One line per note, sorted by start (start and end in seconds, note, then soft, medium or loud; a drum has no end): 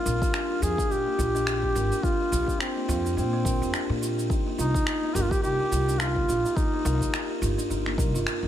0.00 0.58 F4 loud
0.05 0.19 A#1 medium
0.05 0.21 A#4 medium
0.05 cabasa medium
0.22 0.33 G4 medium
0.22 kick medium
0.22 cabasa soft
0.34 0.49 D4 loud
0.34 finger snap medium
0.34 cabasa soft
0.50 0.62 G4 medium
0.62 0.76 F2 loud
0.62 0.78 F4 medium
0.62 0.93 G#4 loud
0.62 udu medium
0.62 cabasa medium
0.78 0.89 D4 medium
0.78 kick loud
0.78 cabasa soft
0.90 1.04 A#1 medium
0.90 1.05 D4 medium
0.90 2.06 G4 loud
0.90 cabasa soft
1.06 1.18 A#3 medium
1.18 1.72 A#1 medium
1.18 1.33 F4 medium
1.18 udu medium
1.18 cabasa medium
1.35 1.46 D4 medium
1.35 cabasa soft
1.47 1.62 C4 medium
1.47 finger snap medium
1.47 cabasa soft
1.63 1.75 C4 medium
1.63 kick medium
1.75 1.89 G#1 medium
1.75 1.91 A#4 medium
1.75 cabasa medium
1.92 2.03 G4 medium
1.92 cabasa soft
2.03 2.19 D4 medium
2.03 2.62 F4 loud
2.03 kick loud
2.03 cabasa soft
2.20 2.32 G4 medium
2.31 2.45 A#1 medium
2.31 2.48 F4 medium
2.31 udu medium
2.31 cabasa medium
2.48 2.59 D4 medium
2.48 kick medium
2.48 cabasa soft
2.60 3.17 C4 medium
2.60 2.75 D4 medium
2.60 finger snap medium
2.60 cabasa soft
2.76 2.88 A#3 medium
2.88 3.18 F2 loud
2.88 3.03 F4 loud
2.88 udu medium
2.88 cabasa medium
3.05 3.16 D4 medium
3.05 cabasa soft
3.17 3.46 A#2 medium
3.17 3.31 C4 medium
3.17 3.98 C4 medium
3.17 cabasa soft
3.33 3.45 C4 medium
3.45 3.59 A#1 medium
3.45 3.61 A#4 medium
3.45 kick loud
3.45 cabasa medium
3.61 3.71 F2 medium
3.61 3.73 G4 medium
3.61 cabasa soft
3.74 3.89 D4 loud
3.74 finger snap medium
3.74 cabasa soft
3.89 4.27 A#2 medium
3.89 4.01 G4 medium
4.02 4.17 F4 medium
4.02 cabasa medium
4.18 4.30 D4 medium
4.18 cabasa soft
4.30 4.45 D#4 medium
4.30 kick loud
4.30 cabasa soft
4.46 4.58 A#3 medium
4.58 4.72 C2 medium
4.58 5.16 D#4 loud
4.58 4.73 F4 medium
4.58 cabasa medium
4.74 4.86 D#4 medium
4.74 kick loud
4.74 cabasa soft
4.87 5.02 C4 medium
4.87 finger snap medium
4.87 cabasa soft
5.03 5.15 C4 loud
5.14 5.28 G1 loud
5.14 5.24 G4 loud
5.14 5.31 A#4 medium
5.14 udu medium
5.14 cabasa medium
5.23 5.32 F4 medium
5.30 5.42 G4 loud
5.30 5.42 G4 medium
5.30 kick loud
5.30 cabasa soft
5.43 5.57 C2 medium
5.43 5.59 D#4 medium
5.43 6.00 G4 loud
5.43 cabasa soft
5.60 5.71 G4 medium
5.72 6.25 C2 medium
5.72 5.87 F4 medium
5.72 udu medium
5.72 cabasa medium
5.88 6.00 D4 medium
5.88 cabasa soft
5.99 6.15 D#4 medium
5.99 6.57 F4 loud
5.99 finger snap loud
5.99 cabasa soft
6.16 6.28 A#3 medium
6.16 kick medium
6.28 6.42 A#1 medium
6.28 6.43 F4 medium
6.28 cabasa medium
6.45 6.56 D#4 medium
6.45 cabasa soft
6.56 6.71 C4 medium
6.56 7.41 D#4 medium
6.56 kick loud
6.56 cabasa soft
6.74 6.85 C4 medium
6.85 6.98 C2 loud
6.85 7.01 A#4 medium
6.85 udu medium
6.85 cabasa medium
7.01 7.12 G4 medium
7.01 kick medium
7.01 cabasa soft
7.14 7.29 D#4 loud
7.14 finger snap medium
7.14 cabasa soft
7.30 7.41 G4 medium
7.42 7.55 G1 loud
7.42 7.57 F4 medium
7.42 udu medium
7.42 cabasa medium
7.58 7.69 D4 medium
7.58 cabasa soft
7.70 7.99 G1 medium
7.70 7.85 D#4 medium
7.70 cabasa soft
7.86 7.98 A#3 medium
7.86 finger snap soft
7.98 8.11 C2 medium
7.98 8.08 A#4 medium
7.98 kick loud
7.98 cabasa medium
8.14 8.24 G1 medium
8.14 8.22 F4 medium
8.14 cabasa soft
8.27 8.42 C4 medium
8.27 finger snap medium
8.27 cabasa soft
8.43 8.48 G1 medium
8.43 8.48 D4 medium